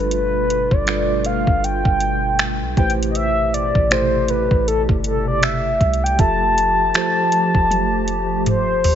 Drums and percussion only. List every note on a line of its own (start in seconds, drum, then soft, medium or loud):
0.11 closed hi-hat medium
0.50 closed hi-hat medium
0.71 kick medium
0.87 finger snap loud
0.87 closed hi-hat medium
1.25 closed hi-hat medium
1.47 kick medium
1.64 closed hi-hat medium
1.85 kick loud
2.00 closed hi-hat medium
2.39 finger snap loud
2.39 closed hi-hat medium
2.77 kick loud
2.77 closed hi-hat soft
2.90 closed hi-hat medium
3.03 closed hi-hat medium
3.15 closed hi-hat medium
3.54 closed hi-hat medium
3.75 kick medium
3.91 finger snap loud
3.91 closed hi-hat medium
4.28 closed hi-hat medium
4.51 kick medium
4.68 closed hi-hat medium
4.89 kick medium
5.04 closed hi-hat medium
5.43 finger snap loud
5.43 closed hi-hat medium
5.81 kick medium
5.81 closed hi-hat soft
5.94 closed hi-hat medium
6.06 closed hi-hat medium
6.19 kick loud
6.19 closed hi-hat medium
6.58 closed hi-hat medium
6.94 finger snap loud
6.94 closed hi-hat medium
7.32 closed hi-hat medium
7.55 kick medium
7.71 closed hi-hat medium
7.71 high tom medium
8.08 closed hi-hat medium
8.46 closed hi-hat medium
8.46 mid tom medium
8.84 floor tom loud
8.84 open hi-hat medium